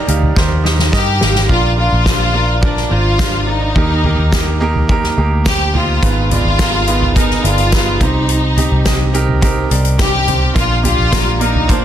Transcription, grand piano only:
0.00 1.51 D#3 medium
0.00 0.07 D#4 loud
0.00 0.08 G4 medium
0.00 0.08 A#4 medium
0.00 1.50 D5 loud
0.00 0.94 D#5 loud
0.07 0.31 D#4 medium
0.07 0.32 G4 medium
0.07 0.32 A#4 medium
0.07 0.32 F5 medium
0.35 0.60 D#4 medium
0.35 0.60 G4 medium
0.35 0.60 A#4 medium
0.35 0.60 C5 medium
0.64 0.88 D#4 medium
0.64 0.88 G4 medium
0.64 0.89 A#4 medium
0.64 0.89 C5 medium
0.92 1.16 D#4 loud
0.92 1.17 G4 loud
0.92 1.17 A#4 medium
0.92 1.17 D#5 loud
1.20 1.44 D#4 medium
1.20 1.45 G4 medium
1.20 1.45 A#4 medium
1.20 1.45 F5 medium
1.48 2.30 A#2 soft
1.48 1.73 D4 medium
1.48 1.73 F4 medium
1.48 1.73 A#4 medium
1.48 1.74 D5 medium
1.76 2.01 D4 medium
1.76 2.01 F4 medium
1.76 2.02 A#4 medium
1.76 2.02 D5 medium
2.05 2.29 D4 medium
2.05 2.30 F4 medium
2.05 2.30 A#4 medium
2.05 2.30 C5 medium
2.33 2.58 D4 medium
2.33 2.58 F4 medium
2.33 2.58 A#4 medium
2.33 2.59 D5 medium
2.61 2.86 D4 medium
2.61 2.86 F4 medium
2.61 2.87 A#4 medium
2.61 2.87 D5 medium
2.90 3.14 D4 medium
2.90 3.15 F4 medium
2.90 3.15 A#4 medium
2.90 3.15 C5 medium
3.18 3.43 D4 medium
3.18 3.43 F4 medium
3.18 3.43 A#4 medium
3.18 3.44 C5 medium
3.46 3.71 D4 medium
3.46 3.71 F4 medium
3.46 3.71 A#4 medium
3.46 3.72 D5 medium
3.75 4.57 D#3 medium
3.75 3.99 A#3 medium
3.75 4.00 D#4 medium
3.75 4.00 G4 medium
3.75 4.00 A#4 medium
4.04 4.28 A#3 medium
4.04 4.28 D#4 medium
4.04 4.28 G4 medium
4.04 4.29 A#4 medium
4.32 4.56 A#3 medium
4.32 4.57 D#4 medium
4.32 4.57 G4 medium
4.32 4.57 A#4 medium
4.60 4.84 A#3 loud
4.60 4.85 D#4 loud
4.60 4.85 G4 medium
4.60 4.85 A#4 loud
4.89 5.13 A#3 medium
4.89 5.13 D#4 medium
4.89 5.13 G4 medium
4.89 5.14 A#4 loud
5.17 5.41 A#3 medium
5.17 5.41 D#4 medium
5.17 5.42 G4 medium
5.17 5.42 A#4 medium
5.45 5.70 A#3 medium
5.45 5.70 D#4 medium
5.45 5.70 G4 medium
5.45 5.71 C5 medium
5.74 5.98 A#3 medium
5.74 5.98 D#4 medium
5.74 5.98 G4 medium
5.74 5.99 C5 medium
6.02 6.84 G#2 medium
6.02 6.26 B3 medium
6.02 6.26 D#4 medium
6.02 6.27 G#4 medium
6.02 6.27 B4 medium
6.30 6.54 B3 medium
6.30 6.55 D#4 medium
6.30 6.55 G#4 medium
6.30 6.55 D5 medium
6.58 6.83 B3 medium
6.58 6.83 D#4 medium
6.58 6.83 G#4 medium
6.58 6.84 A#4 medium
6.87 7.11 B3 medium
6.87 7.11 D#4 medium
6.87 7.12 G#4 medium
6.87 7.12 B4 medium
7.15 7.39 B3 medium
7.15 7.40 D#4 medium
7.15 7.40 G#4 medium
7.15 7.40 A#4 medium
7.43 7.68 B3 medium
7.43 7.68 D#4 medium
7.43 7.68 G#4 medium
7.43 7.69 D5 medium
7.71 7.96 B3 medium
7.71 7.96 D#4 medium
7.71 7.97 G#4 medium
7.71 7.97 B4 medium
8.00 8.82 C3 medium
8.00 8.48 C4 medium
8.00 8.49 D#4 medium
8.00 8.49 G4 medium
8.00 8.49 C5 medium
8.56 8.81 C4 medium
8.56 8.81 D#4 medium
8.56 8.82 G4 medium
8.56 8.82 D#5 medium
8.85 9.09 C4 medium
8.85 9.09 D#4 medium
8.85 9.10 G4 medium
8.85 9.10 D#5 medium
9.13 9.38 C4 medium
9.13 9.38 D#4 medium
9.13 9.38 G4 medium
9.13 9.38 A#4 loud
9.41 9.66 C4 loud
9.41 9.66 D#4 medium
9.41 9.66 G4 medium
9.41 9.67 A#4 loud
9.69 9.94 C4 medium
9.69 9.94 D#4 medium
9.69 9.95 G4 medium
9.69 9.95 D5 medium
9.98 10.22 C4 medium
9.98 10.23 D#4 medium
9.98 10.23 G4 medium
9.98 10.23 C5 medium
10.26 10.51 C4 medium
10.26 10.51 D#4 medium
10.26 10.51 G4 medium
10.26 10.52 C5 medium
10.55 11.36 A#2 medium
10.55 10.79 A#3 medium
10.55 10.79 D4 medium
10.55 10.80 F4 medium
10.55 10.80 A#4 medium
10.83 11.07 A#3 medium
10.83 11.08 D4 medium
10.83 11.08 F4 medium
10.83 11.08 G4 medium
11.11 11.36 A#3 medium
11.11 11.36 D4 medium
11.11 11.36 F4 medium
11.11 11.37 A#4 medium
11.40 11.64 A#3 medium
11.40 11.64 D4 medium
11.40 11.65 F4 medium
11.40 11.65 A#4 medium
11.68 11.85 A#3 medium
11.68 11.85 D4 medium
11.68 11.85 F4 medium
11.68 11.85 C5 loud

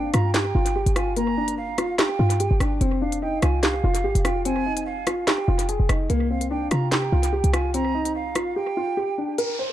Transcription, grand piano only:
0.00 0.10 D4 medium
0.14 0.31 F4 medium
0.34 0.51 G4 medium
0.55 0.72 F4 medium
0.76 0.92 G4 medium
0.96 1.13 F4 medium
1.17 1.33 A#3 loud
1.37 1.54 D4 medium
1.78 1.95 F4 medium
1.99 2.16 G4 medium
2.19 2.36 F4 medium
2.40 2.57 G4 medium
2.61 2.77 D4 medium
2.81 2.98 C4 loud
3.02 3.18 D4 medium
3.22 3.39 D#4 medium
3.43 3.60 F4 medium
3.63 3.80 G4 medium
3.84 4.01 F4 medium
4.04 4.21 G4 medium
4.25 4.42 F4 medium
4.45 4.62 C4 loud
4.66 4.83 D#4 medium
5.07 5.24 F4 medium
5.28 5.44 G4 medium
5.48 5.65 F4 medium
5.69 5.85 G#4 medium
5.89 6.06 D#4 medium
6.10 6.27 A#3 loud
6.30 6.47 C4 medium
6.51 6.68 D4 medium
6.71 6.88 F4 medium
6.92 7.09 G4 loud
7.12 7.29 F4 medium
7.33 7.50 G4 loud
7.54 7.70 F4 medium
7.74 7.91 C4 loud
7.95 8.11 D#4 medium
8.36 8.53 F4 medium
8.56 8.73 G4 medium
8.77 8.94 F4 medium
8.97 9.14 G4 medium
9.18 9.35 D4 medium
9.38 9.55 A#4 loud
9.59 9.73 C5 medium

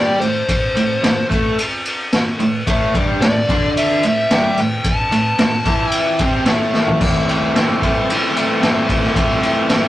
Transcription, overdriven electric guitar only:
0.00 0.19 G3 medium
0.00 0.19 G4 loud
0.20 0.42 A2 medium
0.76 0.97 A2 medium
1.03 1.24 A2 medium
1.30 1.56 A3 loud
1.30 1.57 A4 loud
2.39 2.61 A2 medium
2.67 2.93 A2 medium
2.67 2.93 A3 loud
2.94 3.20 G2 medium
2.94 3.21 G3 loud
3.24 3.44 A2 medium
3.50 4.02 D3 medium
3.50 4.03 D4 loud
4.03 4.25 A2 medium
4.30 4.56 G3 medium
4.30 4.57 G4 loud
4.59 4.79 A2 medium
5.11 5.33 A2 medium
5.39 5.60 A2 medium
5.65 6.18 E3 medium
5.65 6.19 E4 loud
6.20 6.46 C3 medium
6.20 6.46 C4 medium
6.46 6.99 A2 medium
6.46 7.00 A3 loud
7.00 7.27 A2 medium
7.00 7.28 E3 medium
7.00 7.29 A3 loud
7.00 7.29 C4 loud
7.00 7.30 E4 loud
7.28 7.54 A2 medium
7.28 7.55 E3 medium
7.28 7.56 A3 medium
7.28 7.57 C4 medium
7.28 7.57 E4 medium
7.55 7.81 A2 medium
7.55 7.82 E3 medium
7.55 7.83 A3 loud
7.55 7.83 C4 loud
7.55 7.84 E4 loud
7.82 8.08 A2 medium
7.82 8.08 E3 medium
7.82 8.10 A3 medium
7.82 8.10 C4 medium
7.82 8.11 E4 medium
8.09 8.34 A2 medium
8.09 8.34 E3 medium
8.09 8.36 A3 loud
8.09 8.36 C4 medium
8.09 8.36 E4 loud
8.35 8.59 A2 medium
8.35 8.60 E3 medium
8.35 8.61 A3 medium
8.35 8.61 C4 medium
8.35 8.62 E4 medium
8.60 8.86 A2 loud
8.60 8.86 E3 loud
8.60 8.89 A3 medium
8.60 8.88 C4 loud
8.60 8.89 E4 loud
8.87 9.13 A2 medium
8.87 9.13 E3 medium
8.87 9.15 A3 medium
8.87 9.15 C4 medium
8.87 9.15 E4 medium
9.14 9.40 A2 medium
9.14 9.41 E3 medium
9.14 9.42 A3 loud
9.14 9.42 C4 loud
9.14 9.43 E4 loud
9.41 9.67 A2 medium
9.41 9.68 E3 medium
9.41 9.70 A3 medium
9.41 9.70 C4 loud
9.41 9.70 E4 loud
9.69 9.88 A2 medium
9.69 9.88 E3 medium
9.69 9.88 A3 loud
9.69 9.88 C4 loud
9.69 9.88 E4 loud

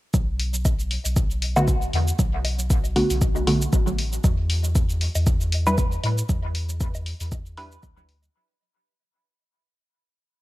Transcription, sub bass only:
0.14 0.98 B1 medium
1.05 1.88 B1 medium
1.93 2.12 E2 medium
2.19 3.03 B1 medium
3.10 3.67 B1 medium
3.73 4.19 A1 medium
4.24 5.08 E2 medium
5.15 5.98 E2 medium
6.04 6.22 A2 loud
6.29 7.14 E2 medium
7.21 7.78 E2 medium
7.83 8.29 D2 medium

